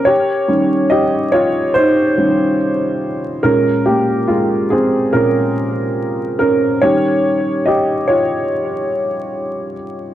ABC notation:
X:1
M:4/4
L:1/8
Q:"Swing 16ths" 1/4=71
K:Ebmix
V:1 name="Upright piano"
[Gd]2 [Ge] [Fd] [Ec]4 | B [B,G] [A,F] [CA] B3 [DB] | [Gd]2 [Ge] [Fd]4 z |]
V:2 name="Upright piano" clef=bass
z [E,G,D] z3 [E,G,D] z2 | [B,,A,D] z3 [B,,A,D] z3 | [E,G,D]8 |]